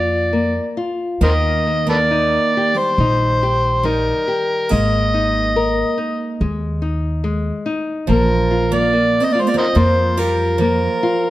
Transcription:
Already playing: F2 A#3 F4 D5
0.33 A#3
0.77 F4
1.21 D#2 D#3 A#3 A#4 C5 D#5
1.67 A#3
1.87 A#3 A4 B4 D5
2.11 D#4
2.57 G4
2.74 G3 C5
2.98 A#1 D#4
3.43 G4
3.83 G3 D#4 A#4
4.28 G4
4.69 G#1 G#3 A#3 D#5
5.14 D#4
5.56 A#4
5.98 D#4
6.41 D#2 G#3
6.82 D#4
7.24 G#3
7.66 D#4
8.07 A#1 F3 A#3
8.11 A#4
8.51 F4
8.72 A#3 D5
8.93 A#3
9.20 C4
9.25 D#5
9.30 A#3 D5
9.35 F4
9.39 G#3 C5
9.47 A#3 D5
9.54 C4 A#4 C5 D#5
9.75 F2 F3 A#3 C5
10.17 G3 F4 A#4
10.58 F3 A#3 A#4
11.03 F4

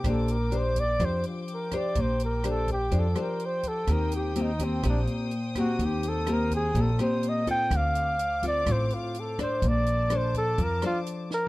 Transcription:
Already playing: G4 D6
0.04 A#1 A#3 D4 G4 C5 G5, kick, cross-stick, closed hi-hat
0.10 A4
0.28 A#4, closed hi-hat
0.51 D4 G4 C5, closed hi-hat
0.58 C5
0.76 D5, kick, closed hi-hat
0.99 F2 F3 D4 G4 C5, kick, cross-stick, closed hi-hat
1.05 C5
1.23 closed hi-hat
1.28 F4
1.48 closed hi-hat
1.54 A#4
1.71 D4 G4 C5, kick, cross-stick, closed hi-hat
1.77 D5
1.95 A#1 A#3, kick, closed hi-hat
2.01 C5
2.20 closed hi-hat
2.25 A#4
2.44 D4 G4 C5, cross-stick, closed hi-hat
2.50 A4
2.68 kick, closed hi-hat
2.73 G4
2.91 F2 F3 D4 G4 C5, kick, closed hi-hat
2.99 A4
3.15 D4 G4 C5, cross-stick, closed hi-hat
3.22 A#4
3.40 closed hi-hat
3.46 C5
3.63 kick, closed hi-hat
3.68 A4
3.87 D#2 D#3 A#3 C4 G4 D#6, kick, cross-stick, closed hi-hat
3.92 A#4
4.12 closed hi-hat
4.16 G4
4.36 A#3 C4 G4, closed hi-hat
4.42 D#4
4.59 A#3 C4 G4, kick, closed hi-hat
4.64 C4
4.83 A#1 A#2 A#3 C4 G4, kick, cross-stick, closed hi-hat
4.89 D4
5.07 closed hi-hat
5.31 closed hi-hat
5.55 A#3 C4 F#4 G4, kick, cross-stick, closed hi-hat
5.79 D#2 D#3, kick, closed hi-hat
5.85 G4
6.03 closed hi-hat
6.09 A4
6.27 A#3 C4 G4, cross-stick, closed hi-hat
6.33 A#4
6.51 kick, closed hi-hat
6.55 G#4
6.75 A#1 A#2 A#3 C4 G4, kick, closed hi-hat
6.81 A4
6.99 A#3 C4 G4 C5, cross-stick, closed hi-hat
7.23 closed hi-hat
7.29 D#5
7.47 C4 F4 A4, kick, closed hi-hat
7.51 G5
7.70 D2 D3 F5 D6, kick, cross-stick, closed hi-hat
7.76 F5
7.95 closed hi-hat
8.19 closed hi-hat
8.43 C4 F4 A4, kick, closed hi-hat
8.48 D5
8.66 A1 A2 C4 F4 A4, kick, cross-stick, closed hi-hat
8.72 C5
8.90 F4, closed hi-hat
9.14 closed hi-hat
9.20 A4
9.38 D4 A4 C5, kick, cross-stick, closed hi-hat
9.62 A#1 A#3 A5 D6, kick, closed hi-hat
9.68 D5
9.86 closed hi-hat
10.10 D4 A4 C5, cross-stick, closed hi-hat
10.17 C5
10.34 A4, kick, closed hi-hat
10.58 F2 F3, kick, closed hi-hat
10.63 A#4
10.82 D4 A4 C5, cross-stick, closed hi-hat
10.86 F4
11.06 closed hi-hat
11.31 A#4, snare

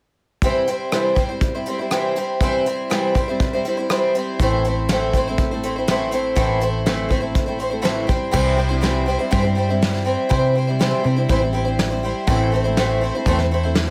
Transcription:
0.42 C3 E3 G3 C4 E4 C5, kick, closed hi-hat
0.67 G3 C4 E4 C5, closed hi-hat
0.92 C3 E3 G3 C4 E4 C5, cross-stick, closed hi-hat
1.15 G3 C4 E4 C5, kick, closed hi-hat
1.29 G3 C4 E4 C5
1.41 kick, closed hi-hat
1.54 G3 C4 E4 C5
1.66 G3 C4 E4 C5, closed hi-hat
1.78 G3 C4 E4 C5
1.91 C3 E3 G3 C4 E4 C5, cross-stick, closed hi-hat
2.16 G3 C4 E4, closed hi-hat
2.20 C5
2.41 C3 E3 G3 C4 E4 C5, kick, closed hi-hat
2.66 G3 C4 E4 C5, closed hi-hat
2.90 C3 E3 G3 C4 E4 C5, cross-stick, closed hi-hat
3.15 G3 C4 E4 C5, kick, closed hi-hat
3.28 G3 C4 E4 C5
3.40 kick, closed hi-hat
3.53 G3 C4 E4 C5
3.65 G3 C4 E4 C5, closed hi-hat
3.77 G3 C4 E4 C5
3.90 C3 E3 G3 C4 E4 C5, cross-stick, closed hi-hat
4.15 G3 C4 E4 C5, closed hi-hat
4.39 A1 A2 E3 A3 C4 E4 C5, kick, closed hi-hat
4.64 A3 C4 E4 C5, closed hi-hat
4.89 A2 E3 A3 C4 E4 C5, snare, closed hi-hat
5.13 A3 C4 E4 C5, kick, closed hi-hat
5.28 A3 C4 E4 C5
5.38 kick, closed hi-hat
5.51 A3 C4 E4 C5
5.63 A3 C4 E4 C5, closed hi-hat
5.76 A3 C4 E4 C5
5.88 A2 E3 A3 C4 E4 C5, snare, closed hi-hat
6.11 A3 C4 E4 C5, closed hi-hat
6.35 A1 A2 E3 A3 C4 E4 C5, kick, closed hi-hat
6.60 A3 C4 E4 C5, closed hi-hat
6.86 A2 E3 A3 C4 E4 C5, snare, closed hi-hat
7.09 A3 C4 E4 C5, kick, closed hi-hat
7.20 A3 C4 E4 C5
7.35 kick, closed hi-hat
7.46 A3 C4 E4 C5
7.59 A3 C4 E4 C5, closed hi-hat
7.70 A3 C4 E4 C5
7.82 A2 E3 A3 C4 E4 C5, snare, closed hi-hat
8.07 G3 C4 E4 C5, kick, closed hi-hat
8.31 C2 C3 E3 G3 C4 E4 C5, kick, crash
8.57 G3 C4 E4 C5
8.69 G3 C4 E4 C5
8.81 C3 E3 G3 C4 E4 C5, snare, open hi-hat
9.06 G3 C4 E4 C5
9.19 G3 C4 E4 C5
9.31 G2 C3 E3 G3 C4 E4 C5, kick, open hi-hat
9.42 G3 C4 E4 C5
9.55 G3 C4 E4 C5
9.69 G3 C4 E4 C5
9.82 snare, open hi-hat
9.93 G3 C4 E4 C5, snare
10.05 G3 C4 E4 C5
10.29 C3 E3 G3 C4 E4 C5, kick, open hi-hat
10.55 G3 C4 E4 C5
10.67 G3 C4 E4 C5
10.79 C3 E3 G3 C4 E4 C5, snare
11.04 C3 G3 C4 E4 C5
11.16 G3 C4 E4 C5
11.29 A1 C3 E3 G3 C4 E4 C5, kick, open hi-hat
11.41 G3 C4 E4 C5
11.53 G3 C4 E4 C5
11.65 G3 C4 E4 C5
11.78 snare, open hi-hat
11.90 G3 C4 E4 C5
12.03 G3 C4 E4 C5
12.27 A1 A2 E3 A3 C4 E4 C5, kick, open hi-hat
12.52 A3 C4 E4 C5
12.64 A3 C4 E4 C5
12.77 A2 E3 A3 C4 E4 C5, snare, open hi-hat
13.01 A3 C4 E4 C5
13.15 A3 C4 E4 C5
13.25 E2 A2 E3 A3 C4 E4 C5, kick, open hi-hat
13.38 A3 C4 E4 C5, snare
13.51 A3 C4 E4 C5
13.63 A3 C4 E4 C5
13.75 snare, open hi-hat
13.87 C5

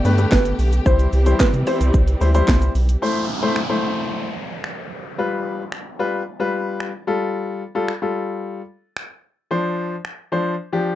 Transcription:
Already playing: D3 A3 B3 G4 D5
0.04 G2 A3 G4 B4, open hi-hat, shaker
0.18 A3 G4 B4, closed hi-hat, shaker
0.32 G1 B4, kick, snare, clap, shaker
0.45 closed hi-hat, shaker
0.59 B1, open hi-hat, shaker
0.73 closed hi-hat, shaker
0.85 C2 E3 G3 C4 E4 C5, kick, shaker
0.99 closed hi-hat, shaker
1.13 C2, open hi-hat, shaker
1.26 G3 E4 C5, closed hi-hat, shaker
1.40 C3 B4, kick, snare, clap, shaker
1.53 C3, closed hi-hat, shaker
1.67 G3 E4 C5, open hi-hat, shaker
1.81 C2, closed hi-hat, shaker
1.94 C2, kick, shaker
2.08 closed hi-hat, shaker
2.21 D2 G3 E4 C5, open hi-hat, shaker
2.34 G3 E4 C5, closed hi-hat, shaker
2.48 C2, kick, snare, clap, shaker
2.62 closed hi-hat, shaker
2.75 B1, open hi-hat, shaker
2.89 closed hi-hat, shaker
3.02 A3 E4 C5, downlifter
3.42 A3 E4 C5
3.56 finger snap
3.69 A3 E4 C5
4.64 finger snap
5.18 G3 F4 B4
5.72 finger snap
5.99 G3 F4 B4
6.40 G3 F4 B4
6.80 finger snap
7.07 G3 F4 A4
7.75 G3 F4 A4
7.88 finger snap
8.02 G3 F4 A4
8.97 finger snap
9.51 F3 D4 C5
10.05 finger snap
10.32 F3 D4 C5
10.72 F3 D4 G4

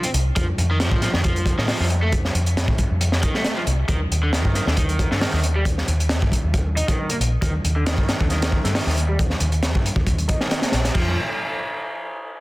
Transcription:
0.03 C4, closed hi-hat
0.14 C2, closed hi-hat
0.36 F2 F3, kick, closed hi-hat
0.58 F2, closed hi-hat
0.71 D#3
0.80 F3, snare, closed hi-hat
0.91 A2, kick
1.02 F3, snare, closed hi-hat
1.14 F2 D#3, snare
1.24 F3, kick, closed hi-hat
1.36 closed hi-hat
1.46 kick, closed hi-hat
1.58 A2 D#3, snare
1.68 F3, snare, open hi-hat
1.80 F2 F3, snare
1.90 closed hi-hat
2.02 A3
2.12 kick, closed hi-hat
2.25 snare
2.34 F2, closed hi-hat
2.46 closed hi-hat
2.57 snare, closed hi-hat
2.68 A2, kick
2.78 kick, closed hi-hat
2.91 F2
3.01 closed hi-hat
3.12 snare
3.23 D#3, kick, closed hi-hat
3.34 A3, snare
3.44 A3, snare, closed hi-hat
3.57 F3
3.67 C2, closed hi-hat
3.88 D#2 D#3, kick, closed hi-hat
4.11 D#2, closed hi-hat
4.23 D3
4.33 D#3, snare, closed hi-hat
4.45 G2, kick
4.55 D#3, snare, closed hi-hat
4.67 D#2 D3, snare
4.77 D#3, kick, closed hi-hat
4.89 closed hi-hat
4.99 kick, closed hi-hat
5.11 G2 D3, snare
5.21 D#3, snare, open hi-hat
5.33 D#2 D#3, snare
5.43 closed hi-hat
5.56 G3
5.65 kick, closed hi-hat
5.78 snare
5.88 D#2, closed hi-hat
6.00 closed hi-hat
6.09 snare, closed hi-hat
6.22 G2, kick
6.32 kick, closed hi-hat
6.44 D#2
6.54 kick, closed hi-hat
6.76 D#4, closed hi-hat
6.88 D#3, kick, closed hi-hat
7.10 A#3, closed hi-hat
7.20 A#1, closed hi-hat
7.42 D#2 D#3, kick, closed hi-hat
7.64 D#2, closed hi-hat
7.76 D3
7.86 D#3, snare, closed hi-hat
7.98 G2, kick
8.08 D#3, snare, closed hi-hat
8.20 D#2 D3, kick
8.30 D#3, snare, closed hi-hat
8.42 snare, closed hi-hat
8.52 kick
8.64 G2 D3, snare, closed hi-hat
8.75 D#3, snare, open hi-hat
8.86 D#2 D#3, snare
8.97 closed hi-hat
9.09 G3
9.19 kick, closed hi-hat
9.30 snare
9.40 D#2, closed hi-hat
9.52 closed hi-hat
9.63 snare, closed hi-hat
9.75 G2, kick
9.86 closed hi-hat
9.96 D#2, kick
10.07 kick, closed hi-hat
10.18 closed hi-hat
10.29 D#4, kick, closed hi-hat
10.41 D#3, snare
10.51 snare, closed hi-hat
10.62 A#3, snare, closed hi-hat
10.72 A#1, snare, closed hi-hat
10.85 snare, closed hi-hat
10.95 F2 F3, kick, crash

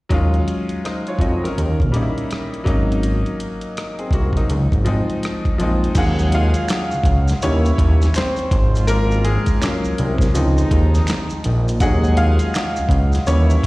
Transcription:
0.09 D#2 F#3 G#3 C#4, kick, closed hi-hat
0.14 F4
0.34 closed hi-hat
0.48 closed hi-hat
0.69 closed hi-hat
0.84 D#4 C5, cross-stick, closed hi-hat
1.07 F4 C#5, closed hi-hat
1.19 F2 F#4 D#5, kick, closed hi-hat
1.44 C#4 A#4, cross-stick, closed hi-hat
1.58 D#2, closed hi-hat
1.80 A#1, kick, closed hi-hat
1.92 G3 A#3 C#4, closed hi-hat
1.96 D#4
2.03 E4
2.18 closed hi-hat
2.31 cross-stick, closed hi-hat
2.54 closed hi-hat
2.64 G#1 F#3 A#3 C#4, kick, closed hi-hat
2.68 D#4
2.92 closed hi-hat
3.03 closed hi-hat
3.26 closed hi-hat
3.40 closed hi-hat
3.61 closed hi-hat
3.77 cross-stick, closed hi-hat
3.99 C4 G#4, closed hi-hat
4.11 C2 A#3 F#4, kick, closed hi-hat
4.33 kick, closed hi-hat
4.37 F#3 D#4, cross-stick
4.50 C#2, closed hi-hat
4.72 G#1, kick, closed hi-hat
4.85 F3 G#3 C4 D#4, closed hi-hat
5.10 closed hi-hat
5.23 cross-stick, closed hi-hat
5.45 kick, closed hi-hat
5.58 A#1 F3 G#3 C4, closed hi-hat
5.63 D#4
5.84 closed hi-hat
5.95 D#2 F3 F#3 G#3 C#4 G#4 F5 F#5, kick, closed hi-hat, crash, maracas
6.19 maracas
6.32 F4 F5, closed hi-hat
6.54 closed hi-hat, maracas
6.68 finger snap, snare, clap, closed hi-hat, maracas
6.91 C#2, maracas
7.04 C#2, kick, closed hi-hat
7.28 snare, closed hi-hat, maracas
7.41 D#2 C#3 E3 G3 A#3 C#4 E4 C#5, closed hi-hat, maracas
7.65 closed hi-hat, maracas
7.78 D#2, kick, closed hi-hat
8.02 snare, closed hi-hat, maracas
8.14 C4 C5, finger snap, snare, closed hi-hat, maracas
8.19 clap
8.36 closed hi-hat, maracas
8.51 G#1 C#3 F3 G#3 F4, kick, closed hi-hat
8.75 closed hi-hat, maracas
8.87 A#3 A#4, closed hi-hat, maracas
9.11 maracas
9.25 G#3 G#4, closed hi-hat
9.46 kick, closed hi-hat, maracas
9.61 F#3 A#3 C#4, finger snap, snare, clap, closed hi-hat, maracas
9.84 C2, maracas
9.98 C2, closed hi-hat
10.18 kick, closed hi-hat, maracas
10.24 snare
10.34 C#2 C3 D#3 F3 G#3 C4 D#4, closed hi-hat, maracas
10.58 closed hi-hat, maracas
10.71 D#2, kick, closed hi-hat
10.95 snare, closed hi-hat, maracas
11.07 finger snap, snare, closed hi-hat, maracas
11.11 clap
11.30 closed hi-hat, maracas
11.44 A#1, closed hi-hat
11.68 closed hi-hat, maracas
11.80 D#2 F3 F#3 G#3 C#4 D#4 G#4 F#5, kick, closed hi-hat, maracas
12.04 maracas
12.17 F4 F5, closed hi-hat
12.39 closed hi-hat, maracas
12.54 finger snap, snare, clap, closed hi-hat, maracas
12.76 C#2, maracas
12.89 C#2, kick, closed hi-hat
13.12 closed hi-hat, maracas
13.16 snare
13.27 D#2 C#3 E3 G3 A#3 C#4 E4 C#5, closed hi-hat, maracas
13.50 closed hi-hat, maracas
13.64 kick

